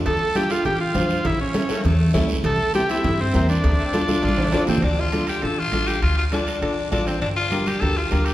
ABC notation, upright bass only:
X:1
M:4/4
L:1/8
Q:1/4=201
K:Dm
V:1 name="Upright bass" clef=bass
D,, z3 A,,,2 F,,2 | A,,, z3 E,,2 ^C,,2 | C,, z3 G,,2 E,,2 | D,, z3 A,,,2 E,, D,, |
D,,4 A,,,2 A,,,2 | D,,4 A,,,2 A,,,2 | G,,,4 D,,2 D,,2 |]